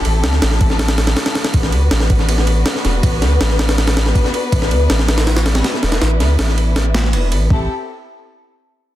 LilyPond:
<<
  \new Staff \with { instrumentName = "String section" } { \time 4/4 \key b \phrygian \tempo 4 = 161 << { <c' e' a'>1 | <b d' b'>1~ | <b d' b'>1~ | <b d' b'>1~ |
<b d' b'>1 | <c' e' g' a'>8 r2. r8 | } \\ { g'1 | fis'1~ | fis'1 | e'1~ |
e'1 | r1 | } >> }
  \new Staff \with { instrumentName = "Sub bass" } { \clef bass \time 4/4 \key b \phrygian a,,8 d,8 a,,2 r4 | a,,8 d,8 a,,2 r8 e,,8 | a,,8 d,8 a,,2 r4 | a,,8 d,8 a,,2 r8 e,,8 |
a,,8 d,8 a,,2 e,,8 a,,8 | a,,8 r2. r8 | }
  \new DrumStaff \with { instrumentName = "Drums" } \drummode { \time 4/4 cymr8 <cymr sn>16 sn16 <cymr sn>16 sn16 <bd cymr>16 sn16 <cymr sn>16 <cymr sn>16 <cymr sn>16 <cymr sn>16 <cymr sn>16 <cymr sn>16 <cymr sn>16 <cymr sn>16 | <bd cymr>16 sn16 cymr8 <cymr sn>16 sn16 <bd cymr>16 sn16 cymr16 sn16 cymr8 <cymr sn>16 sn16 <cymr sn>8 | <bd cymr>8 <cymr sn>8 <cymr sn>16 sn16 <cymr sn>16 <cymr sn>16 <cymr sn>16 <cymr sn>16 <cymr sn>16 sn16 <bd cymr>16 sn16 cymr8 | <bd cymr>16 sn16 cymr8 <cymr sn>16 sn16 <cymr sn>16 <cymr sn>16 <cymr sn>16 <cymr sn>16 <cymr sn>16 <cymr sn>16 <cymr sn>16 sn16 <cymr sn>16 <cymr sn>16 |
<cymr sn>8 <cymr sn>8 <cymr sn>16 sn16 cymr8 <cymr sn>8 <cymr sn>16 sn16 cymr8 cymr8 | bd4 r4 r4 r4 | }
>>